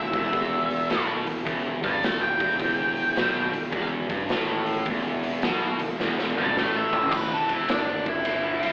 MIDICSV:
0, 0, Header, 1, 5, 480
1, 0, Start_track
1, 0, Key_signature, 1, "minor"
1, 0, Tempo, 567644
1, 271, Time_signature, 4, 2, 24, 8
1, 7377, End_track
2, 0, Start_track
2, 0, Title_t, "Lead electric guitar"
2, 0, Program_c, 0, 29
2, 0, Note_on_c, 0, 76, 91
2, 902, Note_off_c, 0, 76, 0
2, 1558, Note_on_c, 0, 79, 82
2, 1571, Note_on_c, 0, 83, 83
2, 1726, Note_off_c, 0, 79, 0
2, 1726, Note_on_c, 0, 76, 72
2, 1734, Note_off_c, 0, 83, 0
2, 1734, Note_on_c, 0, 81, 87
2, 1874, Note_off_c, 0, 76, 0
2, 1877, Note_on_c, 0, 79, 89
2, 1880, Note_off_c, 0, 81, 0
2, 3283, Note_off_c, 0, 79, 0
2, 5397, Note_on_c, 0, 79, 82
2, 5400, Note_on_c, 0, 83, 96
2, 5552, Note_off_c, 0, 83, 0
2, 5555, Note_off_c, 0, 79, 0
2, 5571, Note_on_c, 0, 76, 65
2, 5577, Note_on_c, 0, 81, 67
2, 5712, Note_off_c, 0, 76, 0
2, 5719, Note_off_c, 0, 81, 0
2, 5726, Note_on_c, 0, 76, 92
2, 6045, Note_off_c, 0, 76, 0
2, 6045, Note_on_c, 0, 71, 85
2, 6203, Note_off_c, 0, 71, 0
2, 6203, Note_on_c, 0, 69, 77
2, 6352, Note_off_c, 0, 69, 0
2, 6363, Note_on_c, 0, 64, 86
2, 6515, Note_off_c, 0, 64, 0
2, 6515, Note_on_c, 0, 62, 85
2, 6822, Note_off_c, 0, 62, 0
2, 6840, Note_on_c, 0, 64, 91
2, 7377, Note_off_c, 0, 64, 0
2, 7377, End_track
3, 0, Start_track
3, 0, Title_t, "Overdriven electric guitar"
3, 0, Program_c, 1, 29
3, 125, Note_on_c, 1, 40, 93
3, 276, Note_off_c, 1, 40, 0
3, 289, Note_on_c, 1, 40, 92
3, 756, Note_off_c, 1, 40, 0
3, 766, Note_on_c, 1, 47, 104
3, 1065, Note_off_c, 1, 47, 0
3, 1070, Note_on_c, 1, 40, 66
3, 1201, Note_off_c, 1, 40, 0
3, 1233, Note_on_c, 1, 40, 96
3, 1539, Note_off_c, 1, 40, 0
3, 1545, Note_on_c, 1, 43, 88
3, 1704, Note_off_c, 1, 43, 0
3, 1707, Note_on_c, 1, 40, 62
3, 1963, Note_off_c, 1, 40, 0
3, 2030, Note_on_c, 1, 40, 93
3, 2190, Note_off_c, 1, 40, 0
3, 2202, Note_on_c, 1, 40, 101
3, 2670, Note_on_c, 1, 47, 103
3, 2674, Note_off_c, 1, 40, 0
3, 2978, Note_off_c, 1, 47, 0
3, 2981, Note_on_c, 1, 40, 65
3, 3118, Note_off_c, 1, 40, 0
3, 3147, Note_on_c, 1, 40, 95
3, 3456, Note_off_c, 1, 40, 0
3, 3465, Note_on_c, 1, 43, 92
3, 3628, Note_off_c, 1, 43, 0
3, 3641, Note_on_c, 1, 45, 84
3, 4113, Note_off_c, 1, 45, 0
3, 4127, Note_on_c, 1, 40, 95
3, 4588, Note_on_c, 1, 47, 101
3, 4595, Note_off_c, 1, 40, 0
3, 4896, Note_off_c, 1, 47, 0
3, 4911, Note_on_c, 1, 40, 71
3, 5042, Note_off_c, 1, 40, 0
3, 5071, Note_on_c, 1, 40, 97
3, 5377, Note_off_c, 1, 40, 0
3, 5386, Note_on_c, 1, 43, 99
3, 5547, Note_off_c, 1, 43, 0
3, 5556, Note_on_c, 1, 45, 93
3, 6029, Note_off_c, 1, 45, 0
3, 7377, End_track
4, 0, Start_track
4, 0, Title_t, "Picked electric bass"
4, 0, Program_c, 2, 34
4, 0, Note_on_c, 2, 28, 71
4, 92, Note_off_c, 2, 28, 0
4, 115, Note_on_c, 2, 28, 85
4, 265, Note_off_c, 2, 28, 0
4, 280, Note_on_c, 2, 28, 86
4, 723, Note_off_c, 2, 28, 0
4, 759, Note_on_c, 2, 35, 88
4, 1049, Note_off_c, 2, 35, 0
4, 1076, Note_on_c, 2, 28, 73
4, 1226, Note_off_c, 2, 28, 0
4, 1242, Note_on_c, 2, 28, 93
4, 1531, Note_off_c, 2, 28, 0
4, 1560, Note_on_c, 2, 31, 84
4, 1709, Note_off_c, 2, 31, 0
4, 1735, Note_on_c, 2, 28, 72
4, 2018, Note_off_c, 2, 28, 0
4, 2031, Note_on_c, 2, 28, 86
4, 2184, Note_off_c, 2, 28, 0
4, 2203, Note_on_c, 2, 28, 82
4, 2646, Note_off_c, 2, 28, 0
4, 2693, Note_on_c, 2, 35, 88
4, 2977, Note_off_c, 2, 35, 0
4, 2994, Note_on_c, 2, 28, 72
4, 3146, Note_off_c, 2, 28, 0
4, 3157, Note_on_c, 2, 28, 95
4, 3449, Note_off_c, 2, 28, 0
4, 3473, Note_on_c, 2, 31, 88
4, 3625, Note_off_c, 2, 31, 0
4, 3651, Note_on_c, 2, 33, 89
4, 4090, Note_off_c, 2, 33, 0
4, 4115, Note_on_c, 2, 28, 86
4, 4561, Note_off_c, 2, 28, 0
4, 4593, Note_on_c, 2, 35, 86
4, 4886, Note_off_c, 2, 35, 0
4, 4914, Note_on_c, 2, 28, 74
4, 5061, Note_off_c, 2, 28, 0
4, 5066, Note_on_c, 2, 28, 84
4, 5362, Note_off_c, 2, 28, 0
4, 5384, Note_on_c, 2, 31, 83
4, 5539, Note_off_c, 2, 31, 0
4, 5544, Note_on_c, 2, 33, 85
4, 5994, Note_off_c, 2, 33, 0
4, 6028, Note_on_c, 2, 28, 81
4, 6315, Note_off_c, 2, 28, 0
4, 6342, Note_on_c, 2, 28, 82
4, 6494, Note_off_c, 2, 28, 0
4, 6516, Note_on_c, 2, 31, 80
4, 6798, Note_off_c, 2, 31, 0
4, 6817, Note_on_c, 2, 31, 87
4, 6970, Note_off_c, 2, 31, 0
4, 6992, Note_on_c, 2, 31, 89
4, 7276, Note_off_c, 2, 31, 0
4, 7317, Note_on_c, 2, 31, 80
4, 7377, Note_off_c, 2, 31, 0
4, 7377, End_track
5, 0, Start_track
5, 0, Title_t, "Drums"
5, 114, Note_on_c, 9, 36, 100
5, 114, Note_on_c, 9, 46, 51
5, 198, Note_off_c, 9, 36, 0
5, 199, Note_off_c, 9, 46, 0
5, 278, Note_on_c, 9, 46, 58
5, 281, Note_on_c, 9, 36, 96
5, 363, Note_off_c, 9, 46, 0
5, 365, Note_off_c, 9, 36, 0
5, 596, Note_on_c, 9, 46, 49
5, 680, Note_off_c, 9, 46, 0
5, 759, Note_on_c, 9, 46, 68
5, 770, Note_on_c, 9, 38, 99
5, 844, Note_off_c, 9, 46, 0
5, 855, Note_off_c, 9, 38, 0
5, 1072, Note_on_c, 9, 46, 47
5, 1157, Note_off_c, 9, 46, 0
5, 1239, Note_on_c, 9, 36, 95
5, 1241, Note_on_c, 9, 46, 65
5, 1324, Note_off_c, 9, 36, 0
5, 1325, Note_off_c, 9, 46, 0
5, 1554, Note_on_c, 9, 36, 93
5, 1558, Note_on_c, 9, 46, 51
5, 1639, Note_off_c, 9, 36, 0
5, 1643, Note_off_c, 9, 46, 0
5, 1717, Note_on_c, 9, 46, 66
5, 1728, Note_on_c, 9, 38, 101
5, 1802, Note_off_c, 9, 46, 0
5, 1813, Note_off_c, 9, 38, 0
5, 2032, Note_on_c, 9, 36, 108
5, 2037, Note_on_c, 9, 46, 56
5, 2117, Note_off_c, 9, 36, 0
5, 2121, Note_off_c, 9, 46, 0
5, 2195, Note_on_c, 9, 36, 95
5, 2195, Note_on_c, 9, 46, 66
5, 2279, Note_off_c, 9, 36, 0
5, 2279, Note_off_c, 9, 46, 0
5, 2510, Note_on_c, 9, 46, 47
5, 2594, Note_off_c, 9, 46, 0
5, 2673, Note_on_c, 9, 46, 61
5, 2684, Note_on_c, 9, 38, 112
5, 2757, Note_off_c, 9, 46, 0
5, 2768, Note_off_c, 9, 38, 0
5, 2986, Note_on_c, 9, 46, 52
5, 3071, Note_off_c, 9, 46, 0
5, 3147, Note_on_c, 9, 46, 58
5, 3151, Note_on_c, 9, 36, 94
5, 3232, Note_off_c, 9, 46, 0
5, 3236, Note_off_c, 9, 36, 0
5, 3465, Note_on_c, 9, 46, 48
5, 3466, Note_on_c, 9, 36, 103
5, 3549, Note_off_c, 9, 46, 0
5, 3550, Note_off_c, 9, 36, 0
5, 3627, Note_on_c, 9, 46, 58
5, 3638, Note_on_c, 9, 38, 108
5, 3712, Note_off_c, 9, 46, 0
5, 3723, Note_off_c, 9, 38, 0
5, 3942, Note_on_c, 9, 46, 45
5, 4026, Note_off_c, 9, 46, 0
5, 4105, Note_on_c, 9, 46, 61
5, 4110, Note_on_c, 9, 36, 92
5, 4189, Note_off_c, 9, 46, 0
5, 4194, Note_off_c, 9, 36, 0
5, 4424, Note_on_c, 9, 46, 49
5, 4509, Note_off_c, 9, 46, 0
5, 4582, Note_on_c, 9, 46, 62
5, 4593, Note_on_c, 9, 38, 107
5, 4667, Note_off_c, 9, 46, 0
5, 4678, Note_off_c, 9, 38, 0
5, 4897, Note_on_c, 9, 46, 52
5, 4982, Note_off_c, 9, 46, 0
5, 5073, Note_on_c, 9, 38, 53
5, 5157, Note_off_c, 9, 38, 0
5, 5230, Note_on_c, 9, 38, 51
5, 5315, Note_off_c, 9, 38, 0
5, 5460, Note_on_c, 9, 47, 62
5, 5545, Note_off_c, 9, 47, 0
5, 5558, Note_on_c, 9, 38, 79
5, 5643, Note_off_c, 9, 38, 0
5, 5859, Note_on_c, 9, 43, 87
5, 5941, Note_off_c, 9, 43, 0
5, 5941, Note_on_c, 9, 43, 81
5, 6016, Note_on_c, 9, 49, 100
5, 6025, Note_off_c, 9, 43, 0
5, 6025, Note_on_c, 9, 36, 98
5, 6100, Note_off_c, 9, 49, 0
5, 6110, Note_off_c, 9, 36, 0
5, 6334, Note_on_c, 9, 51, 63
5, 6419, Note_off_c, 9, 51, 0
5, 6498, Note_on_c, 9, 51, 82
5, 6509, Note_on_c, 9, 38, 109
5, 6583, Note_off_c, 9, 51, 0
5, 6594, Note_off_c, 9, 38, 0
5, 6815, Note_on_c, 9, 51, 63
5, 6818, Note_on_c, 9, 36, 83
5, 6900, Note_off_c, 9, 51, 0
5, 6903, Note_off_c, 9, 36, 0
5, 6975, Note_on_c, 9, 51, 81
5, 7059, Note_off_c, 9, 51, 0
5, 7295, Note_on_c, 9, 51, 64
5, 7377, Note_off_c, 9, 51, 0
5, 7377, End_track
0, 0, End_of_file